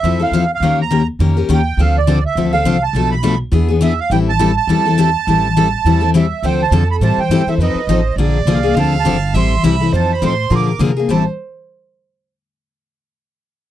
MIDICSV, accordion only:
0, 0, Header, 1, 2, 480
1, 0, Start_track
1, 0, Key_signature, 0, "minor"
1, 0, Tempo, 290980
1, 1021, Time_signature, 4, 2, 24, 8
1, 22614, End_track
2, 0, Start_track
2, 0, Title_t, "Accordion"
2, 0, Program_c, 0, 21
2, 0, Note_on_c, 0, 76, 94
2, 372, Note_off_c, 0, 76, 0
2, 375, Note_on_c, 0, 77, 84
2, 848, Note_off_c, 0, 77, 0
2, 900, Note_on_c, 0, 77, 87
2, 1306, Note_off_c, 0, 77, 0
2, 1344, Note_on_c, 0, 82, 89
2, 1767, Note_off_c, 0, 82, 0
2, 2522, Note_on_c, 0, 79, 83
2, 2977, Note_on_c, 0, 77, 83
2, 2985, Note_off_c, 0, 79, 0
2, 3239, Note_off_c, 0, 77, 0
2, 3266, Note_on_c, 0, 74, 72
2, 3688, Note_off_c, 0, 74, 0
2, 3722, Note_on_c, 0, 76, 90
2, 4156, Note_off_c, 0, 76, 0
2, 4176, Note_on_c, 0, 77, 88
2, 4665, Note_on_c, 0, 81, 93
2, 4669, Note_off_c, 0, 77, 0
2, 5106, Note_off_c, 0, 81, 0
2, 5135, Note_on_c, 0, 83, 92
2, 5580, Note_off_c, 0, 83, 0
2, 6325, Note_on_c, 0, 76, 85
2, 6593, Note_off_c, 0, 76, 0
2, 6593, Note_on_c, 0, 77, 89
2, 6776, Note_off_c, 0, 77, 0
2, 6789, Note_on_c, 0, 79, 94
2, 6909, Note_off_c, 0, 79, 0
2, 7077, Note_on_c, 0, 81, 100
2, 7511, Note_off_c, 0, 81, 0
2, 7536, Note_on_c, 0, 81, 108
2, 10073, Note_off_c, 0, 81, 0
2, 10169, Note_on_c, 0, 76, 72
2, 10644, Note_on_c, 0, 79, 84
2, 10646, Note_off_c, 0, 76, 0
2, 10910, Note_off_c, 0, 79, 0
2, 10922, Note_on_c, 0, 81, 87
2, 11353, Note_off_c, 0, 81, 0
2, 11399, Note_on_c, 0, 83, 102
2, 11486, Note_off_c, 0, 83, 0
2, 11610, Note_on_c, 0, 81, 97
2, 11873, Note_off_c, 0, 81, 0
2, 11875, Note_on_c, 0, 79, 80
2, 12356, Note_off_c, 0, 79, 0
2, 12358, Note_on_c, 0, 76, 84
2, 12445, Note_off_c, 0, 76, 0
2, 12580, Note_on_c, 0, 75, 75
2, 13452, Note_off_c, 0, 75, 0
2, 14066, Note_on_c, 0, 77, 72
2, 14506, Note_on_c, 0, 81, 84
2, 14514, Note_off_c, 0, 77, 0
2, 14736, Note_off_c, 0, 81, 0
2, 14837, Note_on_c, 0, 81, 84
2, 15404, Note_off_c, 0, 81, 0
2, 15457, Note_on_c, 0, 84, 85
2, 15885, Note_off_c, 0, 84, 0
2, 15944, Note_on_c, 0, 83, 93
2, 16369, Note_off_c, 0, 83, 0
2, 16429, Note_on_c, 0, 81, 90
2, 16683, Note_off_c, 0, 81, 0
2, 16701, Note_on_c, 0, 83, 81
2, 16889, Note_off_c, 0, 83, 0
2, 16930, Note_on_c, 0, 84, 96
2, 17388, Note_off_c, 0, 84, 0
2, 17412, Note_on_c, 0, 86, 88
2, 17825, Note_off_c, 0, 86, 0
2, 18323, Note_on_c, 0, 81, 69
2, 18565, Note_off_c, 0, 81, 0
2, 22614, End_track
0, 0, End_of_file